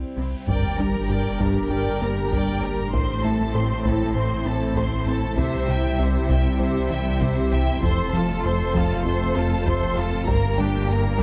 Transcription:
Already playing: G3 C4 E4 C5, reverse cymbal
0.17 C2 C3 C4 E4
0.47 G1 G2 G3 D4 G4 A#4 D5 G5, taiko, sub drop
0.78 G3 D4 G4 A#4 A#5
1.09 G2 G4 A#4 D5 G5
1.40 G2 G3 G4 A#4 A#5, taiko
1.70 G2 G4 A#4 D5 G5
2.01 G2 A#3 G4 A#4 A#5
2.31 G2 G3 A#4 D5 G5, taiko
2.62 G2 A#3 G4 A#4 A#5
2.92 A1 A2 A3 C4 E4 C5 C6, taiko
3.23 A3 E4 A4 A5
3.55 A2 C4 A4 C5 C6
3.85 A2 A3 E4 A4 A5, taiko
4.15 A2 C4 A4 C5 C6
4.45 A2 C4 E4 A4 A5
4.75 A2 A3 C4 C5 C6, taiko
5.06 A2 C4 E4 A4 A5
5.37 C2 C3 G3 G4 C5 E5, taiko
5.68 C3 G3 E4 E5 G5
5.99 C2 C4 G4 C5 E5
6.28 C2 C3 E4 E5 G5, taiko
6.59 C2 C4 G4 C5 E5
6.90 C2 E3 E4 E5 G5
7.21 C2 C3 G4 C5 E5, taiko
7.52 C2 E3 E4 E5 G5
7.82 F1 F2 F3 A3 C4 F4 A4 C5 C6, taiko
8.13 F3 C4 F4 A4 A5
8.44 F2 F4 A4 C5 C6
8.73 F2 F3 F4 A4 A5, taiko
9.05 F2 F4 A4 C5 C6
9.35 F2 A3 F4 A4 A5
9.65 F2 F3 A4 C5 C6, taiko
9.96 F2 A3 F4 A4 A5
10.27 G1 G2 G3 A#3 D4 G4 A#4 A#5, taiko
10.56 G3 D4 G4 G5
10.87 G2 A#3 G4 A#4 A#5
11.18 G2 G3 D4 G4 G5, taiko

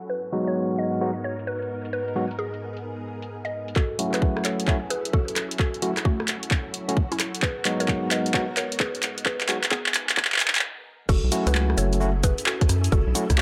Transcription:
Already playing: F#4
0.02 closed hi-hat
0.10 G#2 B3 D#4 A#4 B4
0.33 F#3 G#3 B3 D#4 F#4
0.47 C#5, closed hi-hat
0.78 D#5
0.93 closed hi-hat
1.01 F#3 G#3 B3 D#4 F#4
1.24 C#5
1.39 closed hi-hat
1.47 B4
1.62 closed hi-hat
1.85 closed hi-hat
1.93 G#4 B4
2.08 closed hi-hat
2.16 F#3 G#3 B3 D#4 F#4
2.31 closed hi-hat
2.39 G#4
2.54 closed hi-hat
2.77 closed hi-hat
3.22 closed hi-hat
3.45 D#5, closed hi-hat
3.68 closed hi-hat
3.76 F#3 C#4 E4 F#4 G#4 A4, kick, clap
3.99 F#3 A3 C#4 E4 F#4, open hi-hat
4.14 G#4 B4, cross-stick, clap, closed hi-hat
4.22 kick
4.37 cross-stick
4.45 A4 C#5, clap, open hi-hat
4.60 closed hi-hat
4.67 F#3 A3 C#4 E4 F#4, kick, clap
4.90 G#4 B4, open hi-hat
5.05 closed hi-hat
5.13 F#4 A4, kick
5.28 closed hi-hat
5.36 cross-stick, clap, open hi-hat
5.51 closed hi-hat
5.59 F#4 A4, kick, clap
5.74 closed hi-hat
5.82 F#3 A3 C#4 E4 F#4, open hi-hat
5.97 cross-stick, clap, closed hi-hat
6.05 A3 F#4, kick
6.20 cross-stick
6.28 clap, open hi-hat
6.43 closed hi-hat
6.51 kick, clap
6.74 open hi-hat
6.89 F#3 A3 C#4 E4 F#4, closed hi-hat
6.97 kick
7.12 C#4 E4, closed hi-hat
7.20 cross-stick, clap, open hi-hat
7.35 closed hi-hat
7.42 G#2 B3 D#4 G#4 A#4 B4, kick, clap
7.65 F#3 G#3 B3 D#4 F#4, clap, open hi-hat
7.80 A#4 C#5, closed hi-hat
7.88 kick, clap
8.11 B4 D#5, clap, open hi-hat
8.26 closed hi-hat
8.34 F#3 G#3 B3 D#4 F#4, kick, clap
8.57 A#4 C#5, clap, open hi-hat
8.72 closed hi-hat
8.80 G#4 B4, kick, clap
8.95 closed hi-hat
9.03 clap, open hi-hat
9.18 closed hi-hat
9.26 G#4 B4, kick, clap
9.41 clap, closed hi-hat
9.48 F#3 G#3 B3 D#4 F#4, clap, open hi-hat
9.64 clap, closed hi-hat
9.71 B3 G#4, kick, clap
9.86 clap
9.94 clap, open hi-hat
10.09 clap, closed hi-hat
10.17 kick, clap
10.25 clap
10.32 clap
10.36 clap
10.40 clap, open hi-hat
10.48 clap
10.55 clap, closed hi-hat
10.59 clap
11.09 F#1 C#4 E4 F#4 G#4 A4, kick, crash, shaker
11.24 B1
11.32 F#3 A3 C#4 E4 F#4, open hi-hat, shaker
11.47 C#2 G#4 B4, cross-stick, closed hi-hat, shaker
11.55 clap, shaker
11.70 cross-stick
11.77 F#1 A4 C#5, open hi-hat, shaker
11.93 closed hi-hat, shaker
12.00 F#3 A3 C#4 E4 F#4, shaker
12.23 G#4 B4, kick, open hi-hat, shaker
12.38 closed hi-hat, shaker
12.46 F#4 A4, clap, shaker
12.61 kick, closed hi-hat
12.69 F#2, cross-stick, open hi-hat, shaker
12.84 closed hi-hat, shaker
12.92 F#1 F#4 A4, kick, shaker
13.07 B1
13.15 F#3 A3 C#4 E4 F#4, open hi-hat, shaker
13.30 C#2, kick, cross-stick, closed hi-hat, shaker
13.38 A3 F#4, clap, shaker

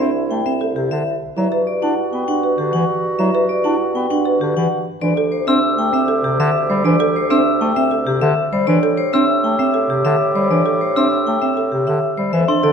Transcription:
Already playing: C2 E4
0.00 C4 D4 E5
0.31 A3 G5
0.46 C4 E5
0.61 A4
0.76 C3 G4
0.91 D3 E5
1.37 G2 F#3 E4 F#4 E5
1.52 B4
1.67 D5
1.82 D4 E4 F#5
2.13 B3 G5
2.28 D4 F#5
2.43 B4
2.58 D3 G4
2.73 E3 F#5
3.19 F#3 E4 E5
3.35 B4
3.49 D5
3.64 D4 E4 F#5
3.95 B3 G5
4.10 D4 F#5
4.25 B4
4.41 D3 G4
4.56 E3 F#5
5.01 D2 E3 D4 G4 D5
5.17 A4
5.32 C5
5.47 C4 D4 E5 E6
5.78 A3 G5
5.93 C4 E5
6.08 A4
6.24 C3 G4
6.39 D3 E5
6.70 G3 C5
6.84 E3 D4 D5
7.00 A4
7.16 C5
7.30 C4 D4 E5 E6
7.61 A3 G5
7.76 C4 E5
7.91 A4
8.06 C3 G4
8.21 D3 E5
8.53 G3 C5
8.67 A2 E3 D4 G4 D5
8.83 A4
8.97 C5
9.13 C4 D4 E5 E6
9.44 A3 G5
9.59 C4 E5
9.74 A4
9.89 C3 G4
10.05 D3 G4 E5
10.35 G3 C5
10.50 E3 D4 D5
10.66 A4
10.81 C5
10.96 C4 D4 E5 E6
11.27 A3 G5
11.42 C4 E5
11.57 A4
11.72 C3 G4
11.87 D3 G4 E5
12.17 G3 C5
12.33 F2 E3 A4 E5
12.48 D4 A4 C6
12.63 D3 A4 D5

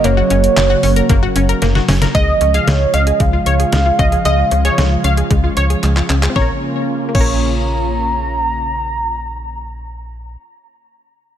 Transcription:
Already playing: C#3 F#3 A#3 F#4
0.04 F#1 A#3 C#5, closed hi-hat
0.17 F#4
0.30 F#1 C#4, closed hi-hat
0.44 closed hi-hat
0.57 F#1, snare, clap, closed hi-hat
0.70 F#4
0.83 F#1 C#4, open hi-hat
0.96 A#4, closed hi-hat
1.09 F#1 A#3, kick, closed hi-hat
1.23 F#4
1.36 F#1 C#4, closed hi-hat
1.49 A#4, closed hi-hat
1.62 F#1 A#3, snare, closed hi-hat
1.75 F#4, snare
1.88 F#1 C#4, snare, open hi-hat
2.02 A#4, snare, closed hi-hat
2.15 C#2 C#3 F3 G#3 F4 D#5, kick, closed hi-hat
2.41 C#2 C#4, closed hi-hat
2.54 G#4 F5, closed hi-hat
2.67 C#2 G#3 C#5, snare, closed hi-hat
2.94 C#2 C#4 D#5 F5, closed hi-hat
3.07 G#4, closed hi-hat
3.20 C#2 G#3 F5, kick, closed hi-hat
3.33 F4
3.46 C#2 C#5, closed hi-hat
3.59 G#4, closed hi-hat
3.72 C#2 G#3, snare, closed hi-hat
3.86 F4
3.99 C#2 C#4 D#5, kick, closed hi-hat
4.12 G#4, closed hi-hat
4.25 C#2 G#3 D#5, closed hi-hat
4.51 C#2 C#4, closed hi-hat
4.65 G#4 C#5, closed hi-hat
4.78 C#2 G#3, snare, closed hi-hat
5.04 C#2 C#4 F5, closed hi-hat
5.17 G#4, closed hi-hat
5.31 C#2 G#3, kick, closed hi-hat
5.44 F4
5.57 C#2 C#5, closed hi-hat
5.70 G#4, closed hi-hat
5.83 C#2 G#3, clap, closed hi-hat
5.96 F4, clap
6.09 C#2 C#4, clap, closed hi-hat
6.23 G#4, clap, closed hi-hat
6.30 C4
6.36 A#1 C#3 A#3 C#4 F4 C#5 A#5, kick, snare
6.42 A#4
7.09 A#3
7.15 A#1 C#4 C#5 A#5, kick, crash
7.21 A#4

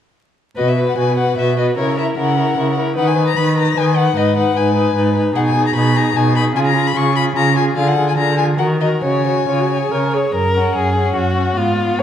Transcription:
0.56 B2 F#4 B4 D#5
0.68 E5
0.77 F#4 B4
0.88 F#5
0.98 B2 F#4 B4 G#5
1.18 F#4 B4 F#5
1.38 B2 F#4 B4 E5
1.58 F#4 B4 D#5
1.78 C#3 E4 A#4 C#5
1.98 E4 A#4 E5
2.18 C#3 E4 A#4 F#5
2.38 E4 A#4
2.57 C#3 E4 A#4
2.78 E4 A#4
2.96 D#3 D#4 B4 F#5
3.08 G#5
3.17 D#4 B4
3.28 A#5
3.37 D#3 D#4 B4 B5
3.57 D#4 B4 A#5
3.77 D#3 D#4 B4 G#5
3.96 D#4 B4 F#5
4.16 G#2 D#4 B4 D#5
4.36 D#4 B4 F#5
4.56 G#2 D#4 B4 G#5
4.76 D#4 B4
4.96 G#2 D#4 B4
5.15 D#4 B4
5.35 B2 D#4 G#4 F#5
5.46 G#5
5.55 D#4 G#4
5.67 A#5
5.75 B2 D#4 G#4 B5
5.95 D#4 G#4 A#5
6.15 B2 D#4 G#4 G#5
6.35 D#4 G#4 B5
6.55 C#3 F4 G#4 G#5
6.67 A#5
6.75 F4 G#4
6.87 B5
6.95 C#3 F4 G#4 C#6
7.16 F4 G#4 B5
7.36 C#3 F4 G#4 A#5
7.56 F4 G#4 G#5
7.77 D3 F4 G#4 F5
7.88 F#5
7.97 F4 G#4
8.08 G#5
8.17 D3 F4 G#4 A#5
8.38 F4 G#4 G#5
8.59 D#3 F#4 A#4 F#5
8.81 F#4 A#4 D#5
9.04 C#3 F#4 C#5 G#5
9.27 F#4 C#5
9.48 C#3 F4 C#5
9.60 F#4
9.70 C#5
9.81 G#4
9.91 C#3 A#4 C#5
10.13 G#4 C#5
10.35 F#2 A#4
10.55 C#4 F#5
10.75 F#2 G#4
10.95 C#4 F#5
11.16 F#2 F#4
11.36 C#4 F#5
11.57 G#2 B3 F4 F5
11.78 B3 F5
11.99 G#2 C#5

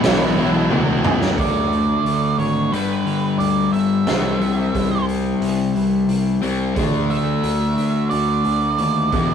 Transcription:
Already playing: E4 E5
0.03 B1 E2 B2 E3 G#3 B3 E4, snare, open hi-hat
0.37 B1 E2 B2 E3 G#3 B3 E4
0.70 D2 E2 B2 E3 G#3 B3 E4, high tom
1.04 C#2 E2 B2 E3 G#3 B3 E4, mid tom
1.22 snare
1.37 D2 D3 A3 D4 D5, kick, open hi-hat
1.71 A3, open hi-hat
2.05 D2 D3, open hi-hat
2.38 G#1 D4 C#5, open hi-hat
2.71 G1 G2 D3 G3 B4, open hi-hat
3.05 G1 G3, open hi-hat
3.38 D2 D4 D5, open hi-hat
3.73 G1 B3 E5, open hi-hat
4.07 C2 C3 G3 C4, snare, open hi-hat
4.41 C2 G3, open hi-hat
4.74 C2 E3, kick, open hi-hat
5.07 C4, open hi-hat
5.41 C2 G3, open hi-hat
5.75 C2 E3, open hi-hat
6.08 C2 C4, open hi-hat
6.41 C2 C3 G3 C4, open hi-hat
6.75 D2 D3 A3 D4, kick, open hi-hat
7.09 A3 E5, open hi-hat
7.42 D2 D3, open hi-hat
7.76 D2 D4, open hi-hat
8.10 D2 A3 D5, open hi-hat
8.44 D2 D3, open hi-hat
8.78 D#2 D4, open hi-hat
9.12 E1 E2 B2 E3, kick, open hi-hat

